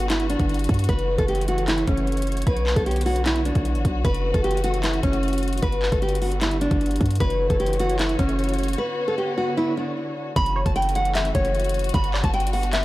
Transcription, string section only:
0, 0, Header, 1, 2, 480
1, 0, Start_track
1, 0, Tempo, 394737
1, 1080, Time_signature, 4, 2, 24, 8
1, 15624, End_track
2, 0, Start_track
2, 0, Title_t, "String section"
2, 0, Program_c, 0, 48
2, 0, Note_on_c, 0, 50, 84
2, 0, Note_on_c, 0, 55, 79
2, 0, Note_on_c, 0, 59, 77
2, 0, Note_on_c, 0, 66, 90
2, 1061, Note_off_c, 0, 50, 0
2, 1061, Note_off_c, 0, 55, 0
2, 1061, Note_off_c, 0, 59, 0
2, 1081, Note_on_c, 0, 52, 85
2, 1081, Note_on_c, 0, 57, 81
2, 1081, Note_on_c, 0, 73, 78
2, 2952, Note_off_c, 0, 66, 0
2, 2981, Note_off_c, 0, 52, 0
2, 2981, Note_off_c, 0, 57, 0
2, 3000, Note_on_c, 0, 50, 83
2, 3001, Note_on_c, 0, 59, 79
2, 3001, Note_on_c, 0, 66, 94
2, 4882, Note_off_c, 0, 73, 0
2, 4901, Note_off_c, 0, 50, 0
2, 4901, Note_off_c, 0, 59, 0
2, 4920, Note_on_c, 0, 57, 78
2, 4920, Note_on_c, 0, 61, 79
2, 4921, Note_on_c, 0, 52, 85
2, 6821, Note_off_c, 0, 52, 0
2, 6821, Note_off_c, 0, 57, 0
2, 6821, Note_off_c, 0, 61, 0
2, 6841, Note_on_c, 0, 50, 84
2, 6841, Note_on_c, 0, 55, 78
2, 6841, Note_on_c, 0, 59, 78
2, 8712, Note_off_c, 0, 66, 0
2, 8741, Note_off_c, 0, 50, 0
2, 8741, Note_off_c, 0, 55, 0
2, 8741, Note_off_c, 0, 59, 0
2, 8759, Note_on_c, 0, 57, 79
2, 8759, Note_on_c, 0, 73, 82
2, 8760, Note_on_c, 0, 52, 87
2, 8760, Note_on_c, 0, 66, 94
2, 10661, Note_off_c, 0, 52, 0
2, 10661, Note_off_c, 0, 57, 0
2, 10680, Note_on_c, 0, 50, 85
2, 10680, Note_on_c, 0, 59, 79
2, 12562, Note_off_c, 0, 66, 0
2, 12562, Note_off_c, 0, 73, 0
2, 12581, Note_off_c, 0, 50, 0
2, 12581, Note_off_c, 0, 59, 0
2, 12600, Note_on_c, 0, 66, 96
2, 12601, Note_on_c, 0, 52, 87
2, 12601, Note_on_c, 0, 57, 76
2, 12601, Note_on_c, 0, 61, 81
2, 14501, Note_off_c, 0, 52, 0
2, 14501, Note_off_c, 0, 57, 0
2, 14501, Note_off_c, 0, 61, 0
2, 14521, Note_on_c, 0, 50, 89
2, 14521, Note_on_c, 0, 55, 82
2, 14521, Note_on_c, 0, 59, 81
2, 15624, Note_off_c, 0, 50, 0
2, 15624, Note_off_c, 0, 55, 0
2, 15624, Note_off_c, 0, 59, 0
2, 15624, Note_off_c, 0, 66, 0
2, 15624, End_track
0, 0, End_of_file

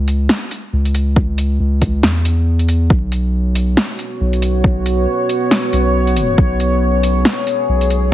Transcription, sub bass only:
0, 0, Header, 1, 2, 480
1, 0, Start_track
1, 0, Tempo, 434783
1, 1285, Time_signature, 4, 2, 24, 8
1, 8983, End_track
2, 0, Start_track
2, 0, Title_t, "Sub bass"
2, 0, Program_c, 0, 38
2, 0, Note_on_c, 0, 37, 93
2, 308, Note_off_c, 0, 37, 0
2, 804, Note_on_c, 0, 37, 100
2, 1748, Note_off_c, 0, 37, 0
2, 1763, Note_on_c, 0, 37, 101
2, 2228, Note_off_c, 0, 37, 0
2, 2243, Note_on_c, 0, 40, 99
2, 3188, Note_off_c, 0, 40, 0
2, 3204, Note_on_c, 0, 35, 100
2, 4148, Note_off_c, 0, 35, 0
2, 4642, Note_on_c, 0, 35, 96
2, 5587, Note_off_c, 0, 35, 0
2, 6323, Note_on_c, 0, 35, 98
2, 7028, Note_off_c, 0, 35, 0
2, 7044, Note_on_c, 0, 35, 98
2, 7988, Note_off_c, 0, 35, 0
2, 8486, Note_on_c, 0, 35, 98
2, 8983, Note_off_c, 0, 35, 0
2, 8983, End_track
0, 0, End_of_file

